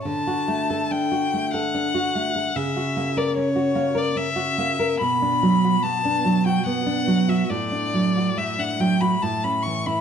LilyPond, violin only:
\new Staff \with { instrumentName = "Violin" } { \time 3/4 \key d \major \tempo 4 = 72 a''4 g''8. fis''4~ fis''16 | e''8. d''16 cis''8. d''16 e''4 | b''4 a''8. g''16 fis''8. e''16 | d''4 e''16 fis''16 g''16 b''16 a''16 b''16 cis'''16 b''16 | }